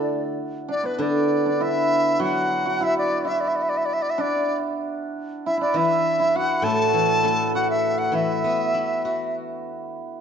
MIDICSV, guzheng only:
0, 0, Header, 1, 2, 480
1, 0, Start_track
1, 0, Tempo, 609137
1, 786, Time_signature, 4, 2, 24, 8
1, 2213, Tempo, 591716
1, 6533, Tempo, 615385
1, 8150, End_track
2, 0, Start_track
2, 0, Title_t, "Guzheng"
2, 0, Program_c, 0, 107
2, 0, Note_on_c, 0, 50, 56
2, 0, Note_on_c, 0, 62, 39
2, 0, Note_on_c, 0, 64, 39
2, 0, Note_on_c, 0, 69, 37
2, 292, Note_off_c, 0, 50, 0
2, 303, Note_off_c, 0, 62, 0
2, 545, Note_off_c, 0, 64, 0
2, 777, Note_on_c, 0, 50, 46
2, 788, Note_off_c, 0, 69, 0
2, 1729, Note_on_c, 0, 54, 47
2, 2210, Note_off_c, 0, 50, 0
2, 3165, Note_off_c, 0, 54, 0
2, 4590, Note_on_c, 0, 52, 52
2, 5305, Note_on_c, 0, 45, 56
2, 5549, Note_off_c, 0, 52, 0
2, 5559, Note_on_c, 0, 52, 40
2, 5799, Note_on_c, 0, 57, 36
2, 6510, Note_off_c, 0, 52, 0
2, 6519, Note_on_c, 0, 52, 48
2, 6761, Note_off_c, 0, 45, 0
2, 6765, Note_off_c, 0, 57, 0
2, 6773, Note_on_c, 0, 59, 37
2, 7007, Note_on_c, 0, 64, 35
2, 7247, Note_on_c, 0, 66, 39
2, 7732, Note_off_c, 0, 59, 0
2, 7965, Note_off_c, 0, 52, 0
2, 7972, Note_off_c, 0, 64, 0
2, 8150, Note_off_c, 0, 66, 0
2, 8150, End_track
0, 0, End_of_file